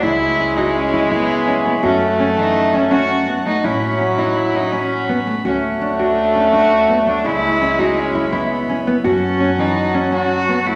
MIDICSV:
0, 0, Header, 1, 6, 480
1, 0, Start_track
1, 0, Tempo, 360577
1, 44, Time_signature, 5, 2, 24, 8
1, 14316, End_track
2, 0, Start_track
2, 0, Title_t, "Harmonium"
2, 0, Program_c, 0, 20
2, 36, Note_on_c, 0, 73, 71
2, 38, Note_on_c, 0, 83, 89
2, 42, Note_on_c, 0, 64, 76
2, 2419, Note_off_c, 0, 73, 0
2, 2421, Note_off_c, 0, 83, 0
2, 2422, Note_off_c, 0, 64, 0
2, 2454, Note_on_c, 0, 66, 79
2, 2458, Note_on_c, 0, 81, 87
2, 2459, Note_on_c, 0, 78, 72
2, 4831, Note_off_c, 0, 81, 0
2, 4832, Note_off_c, 0, 78, 0
2, 4860, Note_on_c, 0, 73, 68
2, 4861, Note_on_c, 0, 83, 92
2, 7207, Note_off_c, 0, 66, 0
2, 7233, Note_off_c, 0, 73, 0
2, 7233, Note_off_c, 0, 83, 0
2, 7267, Note_on_c, 0, 73, 81
2, 7269, Note_on_c, 0, 66, 74
2, 9618, Note_off_c, 0, 73, 0
2, 9636, Note_off_c, 0, 66, 0
2, 9638, Note_on_c, 0, 73, 72
2, 9641, Note_on_c, 0, 64, 78
2, 9644, Note_on_c, 0, 83, 80
2, 12017, Note_off_c, 0, 73, 0
2, 12019, Note_off_c, 0, 64, 0
2, 12020, Note_off_c, 0, 83, 0
2, 12034, Note_on_c, 0, 78, 73
2, 12035, Note_on_c, 0, 66, 81
2, 12044, Note_on_c, 0, 81, 89
2, 14316, Note_off_c, 0, 66, 0
2, 14316, Note_off_c, 0, 78, 0
2, 14316, Note_off_c, 0, 81, 0
2, 14316, End_track
3, 0, Start_track
3, 0, Title_t, "Cello"
3, 0, Program_c, 1, 42
3, 25, Note_on_c, 1, 64, 122
3, 754, Note_on_c, 1, 63, 97
3, 774, Note_off_c, 1, 64, 0
3, 1003, Note_on_c, 1, 61, 98
3, 1023, Note_off_c, 1, 63, 0
3, 1485, Note_off_c, 1, 61, 0
3, 1499, Note_on_c, 1, 59, 109
3, 2163, Note_off_c, 1, 59, 0
3, 2434, Note_on_c, 1, 61, 109
3, 2887, Note_off_c, 1, 61, 0
3, 3181, Note_on_c, 1, 63, 112
3, 3662, Note_on_c, 1, 61, 106
3, 3682, Note_off_c, 1, 63, 0
3, 3880, Note_on_c, 1, 66, 121
3, 3900, Note_off_c, 1, 61, 0
3, 4365, Note_off_c, 1, 66, 0
3, 4608, Note_on_c, 1, 63, 109
3, 4857, Note_on_c, 1, 61, 110
3, 4877, Note_off_c, 1, 63, 0
3, 5570, Note_on_c, 1, 63, 91
3, 5590, Note_off_c, 1, 61, 0
3, 5814, Note_on_c, 1, 64, 96
3, 5834, Note_off_c, 1, 63, 0
3, 6065, Note_on_c, 1, 63, 98
3, 6085, Note_off_c, 1, 64, 0
3, 6284, Note_on_c, 1, 61, 105
3, 6304, Note_off_c, 1, 63, 0
3, 7008, Note_off_c, 1, 61, 0
3, 7267, Note_on_c, 1, 61, 101
3, 7706, Note_off_c, 1, 61, 0
3, 7983, Note_on_c, 1, 62, 97
3, 8461, Note_on_c, 1, 61, 94
3, 8481, Note_off_c, 1, 62, 0
3, 8699, Note_on_c, 1, 66, 110
3, 8719, Note_off_c, 1, 61, 0
3, 9175, Note_off_c, 1, 66, 0
3, 9427, Note_on_c, 1, 62, 104
3, 9667, Note_on_c, 1, 64, 117
3, 9687, Note_off_c, 1, 62, 0
3, 10373, Note_on_c, 1, 63, 96
3, 10393, Note_off_c, 1, 64, 0
3, 10626, Note_on_c, 1, 61, 103
3, 10646, Note_off_c, 1, 63, 0
3, 11086, Note_on_c, 1, 59, 94
3, 11106, Note_off_c, 1, 61, 0
3, 11806, Note_off_c, 1, 59, 0
3, 12051, Note_on_c, 1, 61, 118
3, 12771, Note_on_c, 1, 63, 103
3, 12791, Note_off_c, 1, 61, 0
3, 13242, Note_on_c, 1, 61, 90
3, 13262, Note_off_c, 1, 63, 0
3, 13483, Note_off_c, 1, 61, 0
3, 13498, Note_on_c, 1, 66, 109
3, 14201, Note_on_c, 1, 64, 114
3, 14221, Note_off_c, 1, 66, 0
3, 14316, Note_off_c, 1, 64, 0
3, 14316, End_track
4, 0, Start_track
4, 0, Title_t, "Nylon-string guitar"
4, 0, Program_c, 2, 24
4, 38, Note_on_c, 2, 64, 99
4, 283, Note_off_c, 2, 64, 0
4, 526, Note_on_c, 2, 61, 89
4, 648, Note_off_c, 2, 61, 0
4, 765, Note_on_c, 2, 66, 80
4, 1008, Note_off_c, 2, 66, 0
4, 1244, Note_on_c, 2, 64, 85
4, 1366, Note_off_c, 2, 64, 0
4, 1481, Note_on_c, 2, 64, 98
4, 1726, Note_off_c, 2, 64, 0
4, 1958, Note_on_c, 2, 61, 91
4, 2082, Note_off_c, 2, 61, 0
4, 2201, Note_on_c, 2, 59, 84
4, 2324, Note_off_c, 2, 59, 0
4, 2435, Note_on_c, 2, 66, 99
4, 2681, Note_off_c, 2, 66, 0
4, 2926, Note_on_c, 2, 61, 90
4, 3048, Note_off_c, 2, 61, 0
4, 3153, Note_on_c, 2, 52, 81
4, 3400, Note_off_c, 2, 52, 0
4, 3642, Note_on_c, 2, 61, 93
4, 3765, Note_off_c, 2, 61, 0
4, 3874, Note_on_c, 2, 61, 98
4, 4121, Note_off_c, 2, 61, 0
4, 4367, Note_on_c, 2, 59, 93
4, 4489, Note_off_c, 2, 59, 0
4, 4609, Note_on_c, 2, 57, 83
4, 4731, Note_off_c, 2, 57, 0
4, 4849, Note_on_c, 2, 64, 97
4, 5092, Note_off_c, 2, 64, 0
4, 5332, Note_on_c, 2, 61, 89
4, 5454, Note_off_c, 2, 61, 0
4, 5568, Note_on_c, 2, 64, 78
4, 5812, Note_off_c, 2, 64, 0
4, 6052, Note_on_c, 2, 61, 88
4, 6174, Note_off_c, 2, 61, 0
4, 6293, Note_on_c, 2, 61, 95
4, 6536, Note_off_c, 2, 61, 0
4, 6776, Note_on_c, 2, 59, 83
4, 6896, Note_off_c, 2, 59, 0
4, 7015, Note_on_c, 2, 57, 86
4, 7135, Note_off_c, 2, 57, 0
4, 7253, Note_on_c, 2, 66, 91
4, 7496, Note_off_c, 2, 66, 0
4, 7737, Note_on_c, 2, 62, 83
4, 7858, Note_off_c, 2, 62, 0
4, 7979, Note_on_c, 2, 66, 77
4, 8220, Note_off_c, 2, 66, 0
4, 8456, Note_on_c, 2, 62, 85
4, 8577, Note_off_c, 2, 62, 0
4, 8689, Note_on_c, 2, 62, 94
4, 8932, Note_off_c, 2, 62, 0
4, 9175, Note_on_c, 2, 59, 84
4, 9296, Note_off_c, 2, 59, 0
4, 9407, Note_on_c, 2, 57, 83
4, 9529, Note_off_c, 2, 57, 0
4, 9643, Note_on_c, 2, 64, 99
4, 9888, Note_off_c, 2, 64, 0
4, 10133, Note_on_c, 2, 61, 87
4, 10254, Note_off_c, 2, 61, 0
4, 10367, Note_on_c, 2, 66, 81
4, 10611, Note_off_c, 2, 66, 0
4, 10850, Note_on_c, 2, 64, 90
4, 10971, Note_off_c, 2, 64, 0
4, 11082, Note_on_c, 2, 64, 105
4, 11327, Note_off_c, 2, 64, 0
4, 11574, Note_on_c, 2, 61, 89
4, 11694, Note_off_c, 2, 61, 0
4, 11810, Note_on_c, 2, 59, 90
4, 11930, Note_off_c, 2, 59, 0
4, 12038, Note_on_c, 2, 66, 100
4, 12283, Note_off_c, 2, 66, 0
4, 12518, Note_on_c, 2, 61, 92
4, 12641, Note_off_c, 2, 61, 0
4, 12758, Note_on_c, 2, 52, 85
4, 13003, Note_off_c, 2, 52, 0
4, 13235, Note_on_c, 2, 61, 84
4, 13359, Note_off_c, 2, 61, 0
4, 13474, Note_on_c, 2, 61, 95
4, 13719, Note_off_c, 2, 61, 0
4, 13961, Note_on_c, 2, 59, 85
4, 14083, Note_off_c, 2, 59, 0
4, 14197, Note_on_c, 2, 57, 87
4, 14316, Note_off_c, 2, 57, 0
4, 14316, End_track
5, 0, Start_track
5, 0, Title_t, "French horn"
5, 0, Program_c, 3, 60
5, 57, Note_on_c, 3, 56, 127
5, 2437, Note_on_c, 3, 57, 127
5, 2457, Note_off_c, 3, 56, 0
5, 4488, Note_off_c, 3, 57, 0
5, 4847, Note_on_c, 3, 54, 115
5, 6957, Note_off_c, 3, 54, 0
5, 7275, Note_on_c, 3, 57, 127
5, 9647, Note_on_c, 3, 56, 127
5, 9667, Note_off_c, 3, 57, 0
5, 11690, Note_off_c, 3, 56, 0
5, 12047, Note_on_c, 3, 54, 110
5, 14316, Note_off_c, 3, 54, 0
5, 14316, End_track
6, 0, Start_track
6, 0, Title_t, "Upright bass"
6, 0, Program_c, 4, 32
6, 48, Note_on_c, 4, 37, 96
6, 2401, Note_off_c, 4, 37, 0
6, 2449, Note_on_c, 4, 42, 86
6, 4802, Note_off_c, 4, 42, 0
6, 4856, Note_on_c, 4, 33, 92
6, 7207, Note_off_c, 4, 33, 0
6, 7253, Note_on_c, 4, 38, 89
6, 9604, Note_off_c, 4, 38, 0
6, 9647, Note_on_c, 4, 37, 88
6, 11998, Note_off_c, 4, 37, 0
6, 12052, Note_on_c, 4, 42, 94
6, 14316, Note_off_c, 4, 42, 0
6, 14316, End_track
0, 0, End_of_file